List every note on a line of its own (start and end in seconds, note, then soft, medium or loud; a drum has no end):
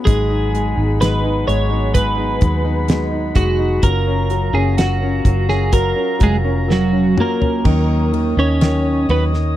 0.05 0.73 G#1 medium
0.05 0.77 G#2 medium
0.05 0.77 D#3 medium
0.05 0.77 F#3 medium
0.05 0.52 G#3 medium
0.05 0.77 B3 medium
0.05 0.77 D#4 medium
0.05 1.01 G#4 medium
0.05 3.80 G#4 medium
0.05 0.76 G#4 medium
0.05 3.80 F#5 medium
0.05 3.80 B5 medium
0.05 kick loud
0.05 closed hi-hat medium
0.30 0.75 D#4 soft
0.54 0.99 G#3 soft
0.54 closed hi-hat medium
0.76 1.44 G#1 medium
0.76 1.00 F#3 soft
0.76 1.00 B3 soft
0.76 1.22 D#4 soft
0.76 1.01 D#4 soft
0.76 1.01 G#4 soft
1.01 1.24 G#2 medium
1.01 1.25 D#3 medium
1.01 1.25 F#3 medium
1.01 1.45 G#3 medium
1.01 1.24 B3 medium
1.01 1.23 D#4 medium
1.01 1.23 G#4 medium
1.01 1.47 B4 medium
1.01 snare medium
1.01 closed hi-hat medium
1.23 1.46 F#3 soft
1.23 1.47 B3 soft
1.23 1.68 D#4 soft
1.23 1.48 D#4 soft
1.23 1.48 G#4 soft
1.47 2.38 G#1 medium
1.47 1.71 F#3 medium
1.47 1.92 G#3 medium
1.47 1.71 B3 medium
1.47 1.70 D#4 medium
1.47 1.70 G#4 medium
1.47 1.94 C#5 loud
1.47 closed hi-hat medium
1.70 2.19 F#3 soft
1.70 2.18 B3 soft
1.70 2.15 D#4 medium
1.70 2.17 D#4 soft
1.70 2.17 G#4 medium
1.93 2.39 G#3 medium
1.93 3.40 B4 medium
1.93 kick medium
1.93 closed hi-hat medium
2.17 2.40 F#3 soft
2.17 2.41 B3 soft
2.17 2.63 D#4 soft
2.17 2.42 D#4 soft
2.17 2.42 G#4 medium
2.41 3.32 D#2 medium
2.41 2.65 F#3 medium
2.41 2.86 G#3 soft
2.41 2.65 B3 medium
2.41 2.64 D#4 medium
2.41 2.63 G#4 medium
2.41 kick medium
2.41 closed hi-hat medium
2.64 2.88 F#3 soft
2.64 2.88 B3 soft
2.64 3.10 D#4 medium
2.64 2.88 D#4 soft
2.64 2.88 G#4 medium
2.88 3.36 G#2 medium
2.88 3.36 D#3 medium
2.88 3.34 F#3 medium
2.88 3.34 G#3 medium
2.88 3.35 B3 medium
2.88 3.35 D#4 medium
2.88 3.36 G#4 medium
2.88 snare loud
2.88 closed hi-hat medium
3.12 3.57 D#4 soft
3.35 3.80 F1 medium
3.35 3.81 F#3 medium
3.35 3.82 G#3 medium
3.35 3.83 B3 medium
3.35 3.83 D#4 medium
3.35 3.85 F#4 medium
3.35 3.83 G#4 medium
3.35 kick medium
3.35 closed hi-hat medium
3.59 3.82 D#4 soft
3.82 4.50 F#1 loud
3.82 4.54 F#3 medium
3.82 4.29 F#3 medium
3.82 7.48 F#3 medium
3.82 4.54 C#4 medium
3.82 4.53 F4 medium
3.82 4.56 A#4 loud
3.82 4.52 A#4 medium
3.82 7.48 F5 medium
3.82 7.48 A#5 medium
3.82 kick loud
3.82 closed hi-hat medium
4.07 4.52 C#4 medium
4.30 4.77 F#3 medium
4.30 closed hi-hat medium
4.53 5.21 F#1 medium
4.53 5.01 C#4 medium
4.53 4.76 C#4 soft
4.53 4.77 F4 soft
4.53 4.78 G#4 medium
4.53 4.77 A#4 soft
4.77 5.01 F#3 medium
4.77 5.25 F#3 medium
4.77 5.01 C#4 medium
4.77 5.01 F4 medium
4.77 5.49 F#4 medium
4.77 4.99 A#4 medium
4.77 snare medium
4.77 closed hi-hat medium
5.01 5.47 C#4 medium
5.01 5.24 C#4 soft
5.01 5.25 F4 soft
5.01 5.25 A#4 medium
5.25 5.93 F#1 loud
5.25 5.49 F#3 medium
5.25 5.71 F#3 medium
5.25 5.49 C#4 medium
5.25 5.48 F4 medium
5.25 5.47 A#4 medium
5.25 kick medium
5.25 closed hi-hat medium
5.48 5.94 C#4 medium
5.48 5.96 C#4 soft
5.48 5.96 F4 soft
5.48 5.72 G#4 medium
5.48 5.95 A#4 soft
5.48 snare soft
5.72 6.17 F#3 medium
5.72 7.14 A#4 medium
5.72 kick medium
5.72 closed hi-hat medium
5.95 6.43 C#4 medium
5.95 6.20 C#4 soft
5.95 6.20 F4 medium
5.95 6.20 A#4 medium
6.19 7.13 F1 medium
6.19 6.67 F#3 medium
6.19 6.45 F#3 medium
6.19 6.36 G#3 medium
6.19 6.45 C#4 medium
6.19 6.45 F4 medium
6.19 6.43 A#4 medium
6.19 kick medium
6.19 closed hi-hat medium
6.24 6.36 G#4 medium
6.44 6.91 C#4 medium
6.44 6.68 C#4 soft
6.44 6.70 F4 soft
6.44 6.68 A#4 medium
6.68 7.16 F#3 medium
6.68 7.17 C#4 medium
6.68 7.18 A#4 medium
6.68 snare medium
6.73 7.20 F#4 medium
6.93 7.39 C#4 soft
7.17 7.64 F#3 medium
7.17 8.35 A#3 medium
7.17 7.65 C#4 medium
7.17 7.66 F4 medium
7.17 7.65 A#4 medium
7.17 mid tom medium
7.21 8.39 A#4 loud
7.40 7.64 C#4 soft
7.40 floor tom medium
7.65 8.33 D#2 loud
7.65 8.11 D#3 medium
7.65 8.37 D#3 medium
7.65 8.37 F#3 medium
7.65 8.37 C#4 medium
7.65 8.37 D#4 medium
7.65 8.36 A#4 medium
7.65 9.57 C#5 medium
7.65 9.57 D#5 medium
7.65 9.57 D#6 medium
7.65 kick loud
7.65 crash medium
8.12 8.60 D#3 medium
8.12 ride medium
8.37 9.05 D#2 medium
8.37 9.06 C#4 medium
8.37 8.61 C#4 soft
8.37 8.61 D#4 soft
8.37 8.61 A#4 soft
8.37 9.06 C#5 medium
8.61 9.54 D#3 medium
8.61 9.09 D#3 medium
8.61 9.07 F#3 medium
8.61 9.09 C#4 medium
8.61 9.09 D#4 medium
8.61 9.09 A#4 medium
8.61 snare medium
8.61 ride medium
9.09 9.57 D#2 medium
9.09 9.33 F#3 medium
9.09 9.23 B3 medium
9.09 9.33 C#4 medium
9.09 9.33 D#4 medium
9.09 9.32 A#4 medium
9.09 9.24 B4 medium
9.09 ride soft
9.33 9.57 C#4 soft
9.33 9.57 D#4 soft
9.33 9.57 A#4 soft
9.33 snare soft